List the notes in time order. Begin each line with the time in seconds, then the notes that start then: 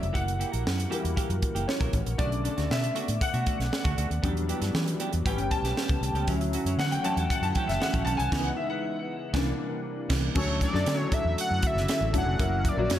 Already playing: C#3 E3 F#3 A3 E4 F#4 C#5 D5 E5
0.01 F1, muted clean electric guitar stroke, closed hi-hat
0.13 F#1 A#3 E4 F#4 G4 A#4 F#5, kick, closed hi-hat
0.26 muted clean electric guitar stroke, closed hi-hat
0.39 A#3 E4 G4, closed hi-hat
0.52 A#1 A#3 E4 A#4, closed hi-hat
0.65 F#2, muted clean electric guitar stroke, snare
0.78 muted clean electric guitar stroke, closed hi-hat
0.90 E3 G3 A#3 E4 G4, closed hi-hat
1.04 E2, muted clean electric guitar stroke, closed hi-hat
1.16 A#3 E4 G4, kick, closed hi-hat
1.29 F#2, muted clean electric guitar stroke, closed hi-hat
1.42 muted clean electric guitar stroke, kick, closed hi-hat
1.55 F#1 A#3 E4 G4, closed hi-hat
1.68 C#5, muted clean electric guitar stroke, snare
1.80 A#1 A#3 E4 A#4, kick, closed hi-hat
1.93 A1, muted clean electric guitar stroke, kick, closed hi-hat
2.06 A#1, muted clean electric guitar stroke, closed hi-hat
2.18 B1 C#3 D3 A3 B3 D4 F#4 D5, kick, closed hi-hat
2.32 muted clean electric guitar stroke, closed hi-hat
2.44 A3 D4 A4, closed hi-hat
2.57 D2 A3 D4 F#4, snare, closed hi-hat
2.70 B2 E5, muted clean electric guitar stroke, snare
2.83 muted clean electric guitar stroke, closed hi-hat
2.95 A3 D4 F#4, closed hi-hat
3.08 A2, muted clean electric guitar stroke, closed hi-hat
3.21 F#5, muted clean electric guitar stroke, kick, closed hi-hat
3.34 B2 A3 D4 F#4, closed hi-hat
3.46 A3 D4 F#4, kick, closed hi-hat
3.59 B1, muted clean electric guitar stroke, snare, closed hi-hat
3.71 muted clean electric guitar stroke, snare
3.84 D2 A3 D4 F#4, kick, closed hi-hat
3.97 D2 A3 D4 F#4, closed hi-hat
4.10 D#2, muted clean electric guitar stroke, closed hi-hat
4.22 E2 E3 F#3 G3 B3 D4 E4 F#4 G4, kick, closed hi-hat
4.35 muted clean electric guitar stroke, closed hi-hat
4.48 B3 D4 G4, closed hi-hat
4.61 G2 B3 D4 A4, snare, closed hi-hat
4.74 E3, muted clean electric guitar stroke, snare
4.86 muted clean electric guitar stroke, closed hi-hat
5.00 B3 D4 G4, closed hi-hat
5.13 E2, muted clean electric guitar stroke, closed hi-hat
5.25 A1 G3 A3 B3 C#4 G4 G5, kick, closed hi-hat
5.38 G1, muted clean electric guitar stroke, closed hi-hat
5.51 A5, muted clean electric guitar stroke, kick, closed hi-hat
5.62 B1 B3 C#4 G4, snare, closed hi-hat
5.77 B3 C#4 G4, snare
5.89 C#2, muted clean electric guitar stroke, kick, closed hi-hat
6.01 C2, muted clean electric guitar stroke, closed hi-hat
6.14 C#2 B3 C#4 G4, closed hi-hat
6.27 D2 D3 E3 F#3 A3 C#4 E4 F#4, kick, closed hi-hat
6.41 muted clean electric guitar stroke, closed hi-hat
6.53 F#3 C#4 F#4, closed hi-hat
6.65 F#2 F#3 C#4 E4, closed hi-hat
6.78 D3 F#5, snare
6.91 G5, muted clean electric guitar stroke, closed hi-hat
7.04 F#3 C#4 E4 A5, closed hi-hat
7.16 E2 G5, muted clean electric guitar stroke, closed hi-hat
7.30 F#5, muted clean electric guitar stroke, kick, closed hi-hat
7.42 F#2 F#3 C#4 E4 A5, closed hi-hat
7.55 F#3 C#4 E4 G5, kick, closed hi-hat
7.67 F#1 E5, muted clean electric guitar stroke, snare, closed hi-hat
7.80 F#5, snare
7.94 A1 F#3 C#4 E4, kick, closed hi-hat
8.05 B1 F#3 C#4 E4 A5, closed hi-hat
8.17 C2 G#5, muted clean electric guitar stroke, closed hi-hat
8.31 C#2 C#3 E3 G#3 B3 D#4, kick, snare, crash
8.43 F#5
8.57 E5
8.70 F#5
9.33 C2 C3 E3 G3 A#3 D4, kick, snare
10.09 C2 E3 A#3 E4, kick, snare, crash
10.35 D2 D3 F#3 A3 C#4 D4 E4 F#4 A4 C#5, kick, crash
10.61 D5, kick, closed hi-hat
10.73 F#2 F#3 A3 D4 A4, snare
10.86 D3, snare, closed hi-hat
10.97 C#5
11.12 E5, kick, closed hi-hat
11.25 E2
11.38 F#5, closed hi-hat
11.51 F#2
11.62 kick, closed hi-hat
11.67 E5
11.75 F#1, snare
11.88 snare, closed hi-hat
12.01 A1
12.13 E1 F#3 A3 C#4 D4 E4, kick, closed hi-hat
12.18 F#5
12.26 F1
12.39 F#1 F#3 A#3 C#4 E4 A#4, kick, closed hi-hat
12.65 D5, kick, closed hi-hat
12.77 A#1 F#3 A#3 C#4 E4 F#4
12.90 F#2 C#5, snare, closed hi-hat